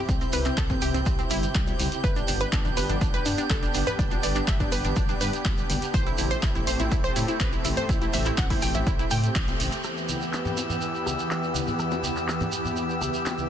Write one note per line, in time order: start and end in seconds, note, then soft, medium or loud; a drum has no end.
0.00 2.00 C3 medium
0.00 2.00 C4 medium
0.00 2.00 E4 medium
0.00 9.80 G4 medium
0.00 9.85 G6 medium
0.09 0.26 C2 loud
0.09 0.15 C4 medium
0.09 kick loud
0.09 closed hi-hat soft
0.09 shekere medium
0.21 0.27 C4 medium
0.21 closed hi-hat soft
0.21 shekere soft
0.33 0.51 C2 medium
0.33 0.40 B4 medium
0.33 open hi-hat loud
0.33 high bongo medium
0.33 high conga medium
0.33 shekere medium
0.46 0.52 C4 medium
0.46 clap soft
0.46 closed hi-hat soft
0.46 shekere soft
0.57 0.75 C2 medium
0.57 0.64 A4 medium
0.57 kick loud
0.57 clap loud
0.57 closed hi-hat soft
0.57 shekere medium
0.69 0.76 C4 medium
0.69 kick medium
0.69 closed hi-hat soft
0.69 low conga medium
0.69 shekere soft
0.82 0.91 C2 medium
0.82 0.88 G4 medium
0.82 open hi-hat loud
0.82 high bongo soft
0.82 shekere medium
0.94 1.03 C2 loud
0.94 1.00 C4 medium
0.94 closed hi-hat soft
0.94 low conga medium
0.94 shekere soft
1.06 1.24 C2 loud
1.06 1.13 C4 medium
1.06 kick loud
1.06 closed hi-hat soft
1.06 shekere medium
1.19 1.25 C4 medium
1.19 closed hi-hat soft
1.19 high bongo soft
1.19 shekere soft
1.30 1.48 G1 medium
1.30 1.94 E4 medium
1.30 open hi-hat loud
1.30 high conga medium
1.30 shekere medium
1.43 closed hi-hat soft
1.43 shekere soft
1.55 1.72 C2 medium
1.55 kick loud
1.55 clap loud
1.55 closed hi-hat soft
1.55 shekere soft
1.67 closed hi-hat soft
1.67 high bongo medium
1.67 shekere soft
1.79 1.88 C2 medium
1.79 open hi-hat loud
1.79 high conga medium
1.79 shekere medium
1.92 closed hi-hat soft
1.92 shekere soft
2.04 2.21 G1 loud
2.04 5.90 B3 medium
2.04 5.90 D4 medium
2.04 2.10 B4 loud
2.04 kick loud
2.04 closed hi-hat soft
2.04 shekere soft
2.16 2.22 D4 medium
2.16 closed hi-hat soft
2.16 shekere soft
2.28 2.46 G1 medium
2.28 2.35 D4 medium
2.28 open hi-hat loud
2.28 high bongo soft
2.28 high conga medium
2.28 shekere medium
2.40 2.47 B4 medium
2.40 closed hi-hat soft
2.40 shekere soft
2.53 2.70 G1 medium
2.53 2.59 D4 medium
2.53 kick loud
2.53 clap loud
2.53 closed hi-hat soft
2.53 shekere soft
2.65 2.71 D4 medium
2.65 closed hi-hat soft
2.65 low conga medium
2.65 shekere soft
2.77 2.86 G1 medium
2.77 2.83 B4 medium
2.77 open hi-hat loud
2.77 high bongo medium
2.77 shekere medium
2.89 2.98 G1 loud
2.89 2.96 D4 medium
2.89 closed hi-hat medium
2.89 low conga medium
2.89 shekere soft
3.01 3.19 G1 loud
3.01 3.08 D4 medium
3.01 kick loud
3.01 closed hi-hat medium
3.01 shekere medium
3.14 3.20 B4 medium
3.14 closed hi-hat soft
3.14 shekere soft
3.26 3.35 G2 medium
3.26 3.32 D4 medium
3.26 open hi-hat loud
3.26 high bongo soft
3.26 high conga medium
3.26 shekere loud
3.38 3.44 D4 medium
3.38 closed hi-hat soft
3.38 shekere soft
3.50 3.68 G1 medium
3.50 3.57 A4 loud
3.50 kick loud
3.50 clap loud
3.50 closed hi-hat soft
3.50 shekere soft
3.63 3.69 D4 medium
3.63 closed hi-hat soft
3.63 high bongo soft
3.63 shekere soft
3.74 3.83 G1 medium
3.74 3.81 D4 medium
3.74 open hi-hat loud
3.74 high conga medium
3.74 shekere medium
3.87 3.93 B4 medium
3.87 closed hi-hat soft
3.87 low conga medium
3.87 shekere soft
3.99 4.16 G1 loud
3.99 4.05 D4 medium
3.99 kick loud
3.99 closed hi-hat soft
3.99 shekere medium
4.11 4.18 D4 medium
4.11 closed hi-hat soft
4.11 high bongo medium
4.11 shekere soft
4.23 4.41 G1 medium
4.23 4.30 D5 medium
4.23 open hi-hat loud
4.23 high conga medium
4.23 shekere medium
4.36 4.42 D4 medium
4.36 clap soft
4.36 closed hi-hat medium
4.36 shekere soft
4.48 4.65 G1 medium
4.48 4.54 E5 medium
4.48 kick loud
4.48 clap loud
4.48 closed hi-hat soft
4.48 shekere soft
4.60 4.66 D4 medium
4.60 kick medium
4.60 closed hi-hat soft
4.60 high bongo soft
4.60 low conga medium
4.60 shekere soft
4.72 4.81 G1 medium
4.72 4.79 B4 medium
4.72 open hi-hat loud
4.72 shekere medium
4.85 4.93 G1 loud
4.85 4.91 D4 medium
4.85 closed hi-hat medium
4.85 low conga medium
4.85 shekere soft
4.96 5.14 G1 loud
4.96 5.03 D4 medium
4.96 kick loud
4.96 closed hi-hat medium
4.96 high bongo soft
4.96 shekere soft
5.09 5.15 D4 medium
5.09 closed hi-hat soft
5.09 shekere soft
5.21 5.30 G2 medium
5.21 5.85 B4 medium
5.21 open hi-hat loud
5.21 high conga medium
5.21 shekere medium
5.33 closed hi-hat medium
5.33 shekere soft
5.45 5.63 G1 medium
5.45 kick loud
5.45 clap loud
5.45 closed hi-hat medium
5.45 high bongo medium
5.45 shekere soft
5.58 closed hi-hat soft
5.58 shekere soft
5.70 5.78 G1 medium
5.70 open hi-hat medium
5.70 high conga medium
5.70 shekere medium
5.82 closed hi-hat soft
5.82 shekere soft
5.94 6.11 A1 medium
5.94 9.80 A3 medium
5.94 9.80 C4 medium
5.94 6.01 C5 loud
5.94 kick loud
5.94 closed hi-hat medium
5.94 high bongo soft
5.94 shekere soft
6.06 6.13 E4 medium
6.06 closed hi-hat soft
6.06 shekere soft
6.18 6.36 A1 medium
6.18 6.25 E4 medium
6.18 open hi-hat loud
6.18 high conga medium
6.18 shekere medium
6.31 6.37 C5 medium
6.31 closed hi-hat medium
6.31 high bongo soft
6.31 shekere soft
6.43 6.60 A1 medium
6.43 6.49 E4 medium
6.43 kick loud
6.43 clap loud
6.43 closed hi-hat medium
6.43 shekere soft
6.55 6.61 E4 medium
6.55 closed hi-hat soft
6.55 low conga medium
6.55 shekere soft
6.67 6.76 A1 medium
6.67 6.74 C5 medium
6.67 open hi-hat loud
6.67 shekere medium
6.80 6.88 A1 loud
6.80 6.86 E4 medium
6.80 closed hi-hat medium
6.80 high bongo medium
6.80 low conga medium
6.80 shekere soft
6.92 7.09 A1 loud
6.92 6.98 E4 medium
6.92 kick loud
6.92 closed hi-hat medium
6.92 shekere soft
7.04 7.10 C5 loud
7.04 closed hi-hat soft
7.04 shekere soft
7.16 7.25 A2 medium
7.16 7.22 E4 medium
7.16 open hi-hat loud
7.16 high conga medium
7.16 shekere medium
7.28 7.35 E4 medium
7.28 closed hi-hat medium
7.28 high bongo soft
7.28 shekere soft
7.40 7.58 A1 medium
7.40 7.47 B4 medium
7.40 kick loud
7.40 clap loud
7.40 closed hi-hat medium
7.40 shekere soft
7.52 7.59 E4 medium
7.52 closed hi-hat soft
7.52 shekere soft
7.65 7.74 A1 medium
7.65 7.71 E4 medium
7.65 open hi-hat medium
7.65 high bongo soft
7.65 high conga medium
7.65 shekere medium
7.77 7.83 C5 medium
7.77 closed hi-hat medium
7.77 low conga medium
7.77 shekere soft
7.89 8.07 A1 loud
7.89 7.96 E4 medium
7.89 kick loud
7.89 closed hi-hat medium
7.89 shekere medium
8.02 8.08 E4 medium
8.02 closed hi-hat soft
8.02 shekere soft
8.13 8.31 A1 medium
8.13 8.20 E5 medium
8.13 open hi-hat loud
8.13 high bongo medium
8.13 high conga medium
8.13 shekere medium
8.26 8.32 E4 medium
8.26 clap soft
8.26 closed hi-hat medium
8.26 shekere soft
8.38 8.55 A1 medium
8.38 8.44 F#5 medium
8.38 kick loud
8.38 clap loud
8.38 closed hi-hat medium
8.38 shekere soft
8.50 8.57 E4 medium
8.50 kick medium
8.50 open hi-hat medium
8.50 low conga medium
8.50 shekere soft
8.62 8.71 A1 medium
8.62 8.69 G5 loud
8.62 open hi-hat loud
8.62 high bongo soft
8.62 shekere medium
8.74 8.83 A1 loud
8.74 8.81 E4 medium
8.74 closed hi-hat medium
8.74 low conga medium
8.74 shekere soft
8.87 9.04 A1 loud
8.87 8.93 E4 medium
8.87 kick loud
8.87 closed hi-hat medium
8.87 shekere medium
8.99 9.05 E4 medium
8.99 closed hi-hat soft
8.99 high bongo soft
8.99 shekere soft
9.11 9.29 A2 medium
9.11 9.75 G5 medium
9.11 open hi-hat loud
9.11 high conga medium
9.11 shekere medium
9.24 closed hi-hat medium
9.24 shekere soft
9.35 9.53 A1 medium
9.35 kick loud
9.35 clap loud
9.35 closed hi-hat medium
9.35 shekere soft
9.48 closed hi-hat soft
9.48 high bongo medium
9.48 high conga medium
9.48 shekere soft
9.59 9.69 A1 medium
9.59 open hi-hat medium
9.59 high conga medium
9.59 shekere medium
9.72 closed hi-hat medium
9.72 shekere soft
9.84 13.49 E2 medium
9.84 13.49 E3 medium
9.84 13.49 B3 medium
9.84 13.49 G4 medium
9.84 13.49 E6 medium
9.84 cross-stick medium
9.84 shekere soft
9.97 shekere soft
10.09 high bongo soft
10.09 high conga medium
10.09 shekere medium
10.21 shekere soft
10.33 clap loud
10.33 shekere soft
10.45 low conga medium
10.45 shekere soft
10.57 high bongo medium
10.57 shekere medium
10.70 low conga medium
10.70 shekere soft
10.81 shekere soft
10.95 shekere soft
11.06 cross-stick medium
11.06 high bongo soft
11.06 high conga medium
11.06 shekere medium
11.19 shekere soft
11.31 clap loud
11.31 shekere soft
11.43 high bongo soft
11.43 shekere soft
11.54 high conga medium
11.54 shekere medium
11.67 low conga medium
11.67 shekere soft
11.79 cross-stick medium
11.79 shekere medium
11.91 high bongo medium
11.91 shekere soft
12.03 high conga medium
12.03 shekere medium
12.16 clap soft
12.16 shekere soft
12.28 clap loud
12.28 shekere soft
12.40 high bongo soft
12.40 low conga medium
12.40 shekere soft
12.52 shekere medium
12.65 low conga medium
12.65 shekere soft
12.76 high bongo soft
12.76 shekere soft
12.89 shekere soft
13.01 cross-stick medium
13.01 high conga medium
13.01 shekere medium
13.14 shekere soft
13.26 clap loud
13.26 high bongo medium
13.26 shekere medium
13.38 high conga medium
13.38 shekere soft